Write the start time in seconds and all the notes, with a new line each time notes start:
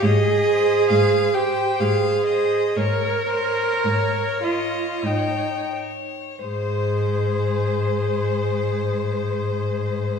0.03 G#2 G#4 D#5
0.49 C5
0.90 G#2 F5
1.34 G4 C5 G5
1.80 G#2 G#4 F5
2.26 C5 D#5
2.76 G#2 A#4 C#5
3.29 C5 C#5
3.84 G#2 C#5
4.43 F4 C#5 D#5
5.03 G#2 D#4 G5
5.76 C#5
6.43 G#2 G#4 C5